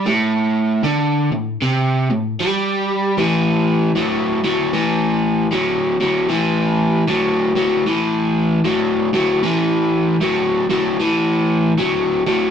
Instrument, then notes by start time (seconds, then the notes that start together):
overdriven electric guitar
0.06 A2
0.84 D3
1.32 A2
1.62 C3
2.10 A2
2.40 G3
3.17 A2 E3
3.95 A2 F#3
4.44 A2 F#3
4.73 A2 E3
5.51 A2 F#3
6.00 A2 F#3
6.29 A2 E3
7.08 A2 F#3
7.56 A2 F#3
7.86 A2 E3
8.64 A2 F#3
9.13 A2 F#3
9.43 A2 E3
10.21 A2 F#3
10.70 A2 F#3
11.00 A2 E3
11.78 A2 F#3
12.26 A2 F#3